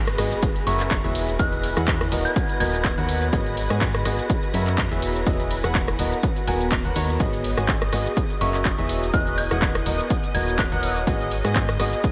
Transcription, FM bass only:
0, 0, Header, 1, 2, 480
1, 0, Start_track
1, 0, Key_signature, 5, "minor"
1, 0, Tempo, 483871
1, 1383, Time_signature, 4, 2, 24, 8
1, 12022, End_track
2, 0, Start_track
2, 0, Title_t, "FM bass"
2, 0, Program_c, 0, 39
2, 0, Note_on_c, 0, 32, 97
2, 161, Note_off_c, 0, 32, 0
2, 184, Note_on_c, 0, 32, 97
2, 329, Note_off_c, 0, 32, 0
2, 663, Note_on_c, 0, 30, 101
2, 1008, Note_off_c, 0, 30, 0
2, 1034, Note_on_c, 0, 28, 100
2, 1361, Note_off_c, 0, 28, 0
2, 1383, Note_on_c, 0, 28, 98
2, 1728, Note_off_c, 0, 28, 0
2, 1755, Note_on_c, 0, 40, 94
2, 2081, Note_off_c, 0, 40, 0
2, 2102, Note_on_c, 0, 27, 98
2, 2248, Note_off_c, 0, 27, 0
2, 2582, Note_on_c, 0, 27, 98
2, 2928, Note_off_c, 0, 27, 0
2, 2953, Note_on_c, 0, 39, 98
2, 3281, Note_off_c, 0, 39, 0
2, 3302, Note_on_c, 0, 32, 101
2, 3648, Note_off_c, 0, 32, 0
2, 3672, Note_on_c, 0, 44, 94
2, 4000, Note_off_c, 0, 44, 0
2, 4022, Note_on_c, 0, 32, 98
2, 4168, Note_off_c, 0, 32, 0
2, 4502, Note_on_c, 0, 42, 102
2, 4848, Note_off_c, 0, 42, 0
2, 4873, Note_on_c, 0, 28, 95
2, 5201, Note_off_c, 0, 28, 0
2, 5223, Note_on_c, 0, 28, 100
2, 5568, Note_off_c, 0, 28, 0
2, 5594, Note_on_c, 0, 28, 95
2, 5921, Note_off_c, 0, 28, 0
2, 5943, Note_on_c, 0, 27, 102
2, 6089, Note_off_c, 0, 27, 0
2, 6423, Note_on_c, 0, 27, 97
2, 6768, Note_off_c, 0, 27, 0
2, 6794, Note_on_c, 0, 27, 97
2, 6881, Note_off_c, 0, 27, 0
2, 6902, Note_on_c, 0, 39, 96
2, 7121, Note_off_c, 0, 39, 0
2, 7143, Note_on_c, 0, 32, 99
2, 7488, Note_off_c, 0, 32, 0
2, 7515, Note_on_c, 0, 32, 94
2, 7842, Note_off_c, 0, 32, 0
2, 7863, Note_on_c, 0, 32, 100
2, 8009, Note_off_c, 0, 32, 0
2, 8343, Note_on_c, 0, 30, 98
2, 8688, Note_off_c, 0, 30, 0
2, 8716, Note_on_c, 0, 28, 96
2, 9042, Note_off_c, 0, 28, 0
2, 9063, Note_on_c, 0, 28, 101
2, 9408, Note_off_c, 0, 28, 0
2, 9435, Note_on_c, 0, 28, 95
2, 9761, Note_off_c, 0, 28, 0
2, 9783, Note_on_c, 0, 27, 100
2, 9929, Note_off_c, 0, 27, 0
2, 10263, Note_on_c, 0, 27, 99
2, 10608, Note_off_c, 0, 27, 0
2, 10634, Note_on_c, 0, 27, 97
2, 10961, Note_off_c, 0, 27, 0
2, 10983, Note_on_c, 0, 32, 99
2, 11328, Note_off_c, 0, 32, 0
2, 11353, Note_on_c, 0, 44, 96
2, 11681, Note_off_c, 0, 44, 0
2, 11702, Note_on_c, 0, 32, 100
2, 11848, Note_off_c, 0, 32, 0
2, 12022, End_track
0, 0, End_of_file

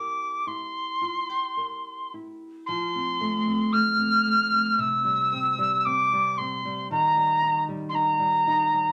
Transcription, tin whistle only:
0, 0, Header, 1, 2, 480
1, 0, Start_track
1, 0, Tempo, 1092896
1, 1172, Time_signature, 4, 2, 24, 8
1, 1642, Tempo, 1061947
1, 2602, Tempo, 1036269
1, 4018, End_track
2, 0, Start_track
2, 0, Title_t, "Tin whistle"
2, 0, Program_c, 0, 75
2, 0, Note_on_c, 0, 86, 61
2, 207, Note_on_c, 0, 84, 64
2, 214, Note_off_c, 0, 86, 0
2, 936, Note_off_c, 0, 84, 0
2, 1169, Note_on_c, 0, 84, 80
2, 1637, Note_on_c, 0, 89, 80
2, 1643, Note_off_c, 0, 84, 0
2, 2120, Note_on_c, 0, 88, 88
2, 2127, Note_off_c, 0, 89, 0
2, 2576, Note_off_c, 0, 88, 0
2, 2576, Note_on_c, 0, 88, 55
2, 2596, Note_on_c, 0, 86, 84
2, 2603, Note_off_c, 0, 88, 0
2, 2840, Note_on_c, 0, 84, 75
2, 2847, Note_off_c, 0, 86, 0
2, 3083, Note_off_c, 0, 84, 0
2, 3089, Note_on_c, 0, 82, 86
2, 3424, Note_off_c, 0, 82, 0
2, 3541, Note_on_c, 0, 84, 57
2, 3567, Note_on_c, 0, 82, 81
2, 3574, Note_off_c, 0, 84, 0
2, 4018, Note_off_c, 0, 82, 0
2, 4018, End_track
0, 0, End_of_file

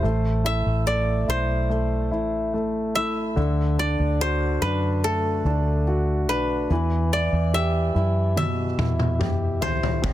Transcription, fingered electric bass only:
0, 0, Header, 1, 2, 480
1, 0, Start_track
1, 0, Key_signature, 1, "minor"
1, 0, Tempo, 833333
1, 21, Time_signature, 4, 2, 24, 8
1, 5835, End_track
2, 0, Start_track
2, 0, Title_t, "Fingered electric bass"
2, 0, Program_c, 0, 33
2, 22, Note_on_c, 0, 33, 85
2, 358, Note_off_c, 0, 33, 0
2, 381, Note_on_c, 0, 33, 68
2, 718, Note_off_c, 0, 33, 0
2, 740, Note_on_c, 0, 35, 78
2, 1219, Note_off_c, 0, 35, 0
2, 1219, Note_on_c, 0, 33, 78
2, 1917, Note_off_c, 0, 33, 0
2, 1939, Note_on_c, 0, 38, 90
2, 2277, Note_off_c, 0, 38, 0
2, 2301, Note_on_c, 0, 38, 71
2, 2638, Note_off_c, 0, 38, 0
2, 2661, Note_on_c, 0, 42, 84
2, 3118, Note_off_c, 0, 42, 0
2, 3138, Note_on_c, 0, 38, 81
2, 3619, Note_off_c, 0, 38, 0
2, 3619, Note_on_c, 0, 35, 76
2, 3843, Note_off_c, 0, 35, 0
2, 3861, Note_on_c, 0, 40, 93
2, 4198, Note_off_c, 0, 40, 0
2, 4219, Note_on_c, 0, 40, 74
2, 4557, Note_off_c, 0, 40, 0
2, 4580, Note_on_c, 0, 42, 74
2, 5038, Note_off_c, 0, 42, 0
2, 5059, Note_on_c, 0, 40, 71
2, 5757, Note_off_c, 0, 40, 0
2, 5782, Note_on_c, 0, 36, 76
2, 5835, Note_off_c, 0, 36, 0
2, 5835, End_track
0, 0, End_of_file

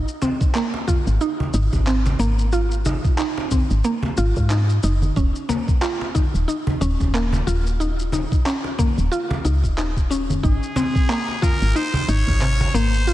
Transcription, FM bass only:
0, 0, Header, 1, 2, 480
1, 0, Start_track
1, 0, Tempo, 659341
1, 1839, Time_signature, 4, 2, 24, 8
1, 9562, End_track
2, 0, Start_track
2, 0, Title_t, "FM bass"
2, 0, Program_c, 0, 39
2, 778, Note_on_c, 0, 32, 77
2, 860, Note_off_c, 0, 32, 0
2, 1119, Note_on_c, 0, 32, 104
2, 1231, Note_off_c, 0, 32, 0
2, 1258, Note_on_c, 0, 32, 87
2, 1569, Note_off_c, 0, 32, 0
2, 1596, Note_on_c, 0, 32, 85
2, 2173, Note_off_c, 0, 32, 0
2, 2698, Note_on_c, 0, 32, 78
2, 2780, Note_off_c, 0, 32, 0
2, 3043, Note_on_c, 0, 32, 90
2, 3152, Note_off_c, 0, 32, 0
2, 3178, Note_on_c, 0, 44, 88
2, 3489, Note_off_c, 0, 44, 0
2, 3520, Note_on_c, 0, 30, 101
2, 3721, Note_off_c, 0, 30, 0
2, 3760, Note_on_c, 0, 27, 98
2, 3871, Note_off_c, 0, 27, 0
2, 4616, Note_on_c, 0, 27, 72
2, 4699, Note_off_c, 0, 27, 0
2, 4959, Note_on_c, 0, 27, 101
2, 5071, Note_off_c, 0, 27, 0
2, 5097, Note_on_c, 0, 27, 88
2, 5408, Note_off_c, 0, 27, 0
2, 5438, Note_on_c, 0, 27, 86
2, 6015, Note_off_c, 0, 27, 0
2, 6536, Note_on_c, 0, 27, 78
2, 6619, Note_off_c, 0, 27, 0
2, 6880, Note_on_c, 0, 37, 100
2, 7016, Note_on_c, 0, 27, 90
2, 7027, Note_off_c, 0, 37, 0
2, 7568, Note_off_c, 0, 27, 0
2, 7599, Note_on_c, 0, 32, 94
2, 7710, Note_off_c, 0, 32, 0
2, 8458, Note_on_c, 0, 32, 74
2, 8540, Note_off_c, 0, 32, 0
2, 8798, Note_on_c, 0, 32, 101
2, 8910, Note_off_c, 0, 32, 0
2, 8937, Note_on_c, 0, 32, 86
2, 9248, Note_off_c, 0, 32, 0
2, 9276, Note_on_c, 0, 32, 80
2, 9562, Note_off_c, 0, 32, 0
2, 9562, End_track
0, 0, End_of_file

